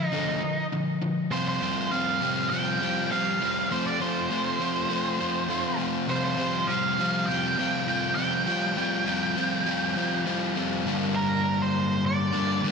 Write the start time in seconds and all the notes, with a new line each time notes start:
Already playing: F4
0.06 D#4
0.12 D3 F3 A3
0.42 D3 F3
0.72 D3 F3
1.02 D3 F3
1.31 C3 F3 G3 C4 F4 C5
1.48 C5
1.61 C3 F3 G3 C4 F4
1.91 C3 F3 G3 C4 F4 F5
2.21 C3 F3 G3 C4 F4
2.50 C3 F3 G3 C4 F4 G5
2.80 C3 F3 G3 C4 F4
3.10 C3 F3 G3 C4 F4 F5
3.40 C3 F3 G3 C4 F4
3.71 F3 A3 C4 F4 C5
3.87 D5
4.00 F3 A3 C4 F4 C5
4.30 F3 A3 C4 F4
4.60 F3 A3 C4 F4
4.90 F3 A3 C4 F4
5.19 F3 A3 C4 F4
5.48 F3 A3 C4 F4
5.78 F3 A3 C4 F4
6.08 C3 F3 G3 C4 F4 C5
6.24 C5
6.38 C3 F3 G3 C4 F4
6.67 C3 F3 G3 C4 F4 F5
6.99 C3 F3 G3 C4 F4
7.26 C3 F3 G3 C4 G5
7.31 F4
7.58 C3 F3 G3 C4 F4
7.88 C3 F3 G3 C4 F4
8.15 C3 F3 G5
8.19 G3 C4 F4
8.47 F3 G3 C4 F4
8.77 F3 G3 C4 F4
9.06 F3 G3 C4 F4
9.36 F3 G3 C4 F4
9.66 F3 G3 C4 F4
9.96 F3 G3 C4 F4
10.26 F3 G3 C4 F4
10.55 F3 G3 C4 F4
10.84 G2 D3 G3 A#3 D4
11.16 A#4
11.62 C5
12.06 D5
12.33 G2 D3 G3 A#3 D4
12.62 G2 D3 G3 A#3 D4